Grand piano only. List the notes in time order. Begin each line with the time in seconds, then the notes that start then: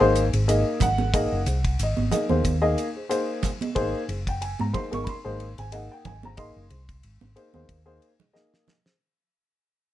0.00 A#3 D#4 G#4 C5
0.34 G#4 C5
0.48 A#3 D#4 G#4 D#5
0.82 F#5
0.99 G#4 A#4
1.14 A#3 D#4 G#4 D#5
1.47 G#4 C5
1.83 D#5
2.11 A#3 D#4 G#4 D#5
2.29 A#3 D#4 G#4 C5
2.62 A#3 D#4 G#4 D#5
2.96 G#4 C5
3.09 A#3 D#4 G#4 C5
3.62 G#4 D#5
3.75 A#3 D#4 G#4 C5
4.09 G#4 C5
4.29 G5
4.42 G#5
4.61 A#5
4.73 A#3 D#4 G#4 C5 C6
4.91 A#3 D#4 G#4 A#4 C#6
5.04 B5
5.09 C6
5.24 A#3 D#4 G#4 C5
5.58 G#4 C5 G#5
5.72 A#3 D#4 G#4 D#5 F#5
5.92 G5
6.06 G#5
6.23 G#4 C5 A#5
6.37 A#3 D#4 G#4 D#5 C6
6.70 G#4 C5
7.36 A#3 D#4 G#4 C5
7.54 A#3 D#4 G#4 C5
7.86 A#3 D#4 G#4 C5
8.19 G#4 D#5
8.33 A#3 D#4 G#4 D#5
8.85 G#4 C5